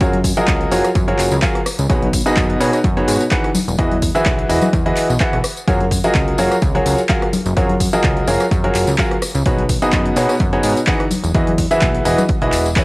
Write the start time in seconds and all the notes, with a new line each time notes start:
0.00 F#2 F#3 F4 F#4 G#4 A#4 C#5, kick, closed hi-hat, tambourine
0.13 closed hi-hat, high conga
0.24 kick, open hi-hat, tambourine
0.37 F#3 F4 F#4 G#4 A#4 D#5, closed hi-hat, tambourine
0.48 C#2, kick, clap, closed hi-hat, tambourine
0.61 closed hi-hat
0.71 F#1 F#3 F4 F#4 G#4 A#4 C#5, open hi-hat, tambourine
0.84 cross-stick, closed hi-hat, tambourine
0.95 F#2, kick, closed hi-hat, tambourine
1.08 F#3 F4 F#4 G#4 A#4 C#5, closed hi-hat
1.18 F#1, clap, open hi-hat, tambourine
1.31 C#2, closed hi-hat, tambourine
1.42 F#3 F4 F#4 G#4 A#4 F5, kick, clap, closed hi-hat, tambourine
1.55 cross-stick, closed hi-hat
1.66 cross-stick, open hi-hat, tambourine
1.79 C#2, closed hi-hat, tambourine
1.89 B1 B2 D#4 F#4 G#4 B4 C#5, kick, closed hi-hat, tambourine
2.02 closed hi-hat, high conga
2.13 kick, open hi-hat, tambourine
2.26 B2 D#4 F#4 G#4 B4 D#5, tambourine
2.37 F#2, kick, clap, closed hi-hat, tambourine
2.50 closed hi-hat
2.60 B2 D#4 F#4 G#4 B4 C#5, open hi-hat, tambourine
2.73 cross-stick, closed hi-hat, tambourine
2.84 F#2, kick, closed hi-hat, tambourine
2.97 B2 D#4 F#4 G#4 B4 C#5, closed hi-hat
3.08 G#2, open hi-hat, tambourine
3.20 tambourine
3.31 E3 D#4 F#4 G#4 B4 F#5, kick, clap, closed hi-hat, tambourine
3.44 cross-stick, closed hi-hat
3.55 open hi-hat, tambourine, high conga
3.68 E1, closed hi-hat, tambourine
3.78 E2 E3 E4 F#4 G#4 B4 D#5, kick, closed hi-hat, tambourine
3.91 closed hi-hat, high conga
4.02 kick, open hi-hat, tambourine
4.15 E3 E4 F#4 G#4 B4 E5, closed hi-hat, tambourine
4.26 B1, kick, clap, closed hi-hat, tambourine
4.39 closed hi-hat
4.49 E1 E3 E4 F#4 G#4 B4 D#5, open hi-hat, tambourine
4.61 cross-stick, tambourine, high conga
4.73 E2, kick, closed hi-hat, tambourine
4.86 E3 E4 F#4 G#4 B4 D#5, closed hi-hat
4.96 clap, open hi-hat, tambourine
5.10 B1, closed hi-hat, tambourine
5.20 E3 E4 F#4 G#4 B4 F#5, kick, clap, closed hi-hat, tambourine
5.33 B1, cross-stick, closed hi-hat
5.44 cross-stick, open hi-hat, tambourine
5.57 closed hi-hat, tambourine
5.68 F#2 F#3 F4 F#4 G#4 A#4 C#5, kick, closed hi-hat, tambourine
5.81 closed hi-hat, high conga
5.91 kick, open hi-hat, tambourine
6.04 F#3 F4 F#4 G#4 A#4 D#5, closed hi-hat, tambourine
6.15 C#2, kick, clap, closed hi-hat, tambourine
6.28 closed hi-hat
6.38 F#1 F#3 F4 F#4 G#4 A#4 C#5, open hi-hat, tambourine
6.51 cross-stick, closed hi-hat, tambourine
6.62 C#2, kick, closed hi-hat, tambourine
6.75 F#3 F4 F#4 G#4 A#4 C#5, closed hi-hat
6.86 C#2, open hi-hat, tambourine
6.98 closed hi-hat, tambourine
7.09 F#3 F4 F#4 G#4 A#4 F5, kick, clap, closed hi-hat, tambourine
7.22 cross-stick, closed hi-hat
7.33 open hi-hat, tambourine, high conga
7.46 F#1, closed hi-hat, tambourine
7.57 F#2 F#3 F4 F#4 G#4 A#4 C#5, kick, closed hi-hat, tambourine
7.69 closed hi-hat, high conga
7.80 kick, open hi-hat, tambourine
7.93 F#3 F4 F#4 G#4 A#4 D#5, tambourine
8.04 C#2, kick, clap, closed hi-hat, tambourine
8.17 closed hi-hat
8.27 F#1 F#3 F4 F#4 G#4 A#4 C#5, open hi-hat, tambourine
8.40 cross-stick, closed hi-hat, tambourine
8.51 F#2, kick, closed hi-hat, tambourine
8.64 F#3 F4 F#4 G#4 A#4 C#5, closed hi-hat
8.74 F#1, clap, open hi-hat, tambourine
8.87 C#2, tambourine
8.98 F#3 F4 F#4 G#4 A#4 F5, kick, clap, closed hi-hat, tambourine
9.11 cross-stick, closed hi-hat
9.22 cross-stick, open hi-hat, tambourine
9.35 C#2, closed hi-hat, tambourine
9.46 B1 B2 D#4 F#4 G#4 B4 C#5, kick, closed hi-hat, tambourine
9.58 closed hi-hat, high conga
9.69 kick, open hi-hat, tambourine
9.82 B2 D#4 F#4 G#4 B4 D#5, closed hi-hat, tambourine
9.92 F#2, kick, clap, closed hi-hat, tambourine
10.06 closed hi-hat
10.16 B2 D#4 F#4 G#4 B4 C#5, open hi-hat, tambourine
10.29 cross-stick, closed hi-hat, tambourine
10.40 F#2, kick, closed hi-hat, tambourine
10.53 B2 D#4 F#4 G#4 B4 C#5, closed hi-hat
10.63 G#2, open hi-hat, tambourine
10.76 closed hi-hat, tambourine
10.87 E3 D#4 F#4 G#4 B4 F#5, kick, clap, closed hi-hat, tambourine
11.00 cross-stick, closed hi-hat
11.11 open hi-hat, tambourine, high conga
11.24 E1, closed hi-hat, tambourine
11.35 E2 E3 E4 F#4 G#4 B4 D#5, kick, closed hi-hat
11.47 closed hi-hat, high conga
11.58 kick, open hi-hat, tambourine
11.71 E3 E4 F#4 G#4 B4 E5, closed hi-hat, tambourine
11.81 B1, kick, clap, closed hi-hat, tambourine
11.95 closed hi-hat
12.05 E1 E3 E4 F#4 G#4 B4 D#5, open hi-hat, tambourine
12.18 cross-stick, closed hi-hat, tambourine, high conga
12.29 kick, closed hi-hat, tambourine
12.42 B1 E3 E4 F#4 G#4 B4 D#5, closed hi-hat
12.52 E1, clap, open hi-hat, tambourine
12.65 closed hi-hat, tambourine
12.76 E3 E4 F#4 G#4 B4 C#5, kick, clap, closed hi-hat, tambourine